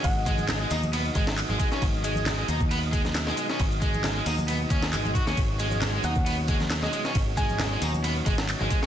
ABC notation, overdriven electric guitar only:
X:1
M:4/4
L:1/16
Q:"Swing 16ths" 1/4=135
K:G#m
V:1 name="Overdriven electric guitar" clef=bass
z2 G,3 G, D z B, z G, z2 G, G, C | z2 G,3 G, D z B, z G, z2 G, G, C | z2 G,3 G, D z B, z C z G, G, F C | z2 G,3 G, D z B, z G, z2 G, G, C |
z2 G,3 G, D z B, z G, z2 G, G, C |]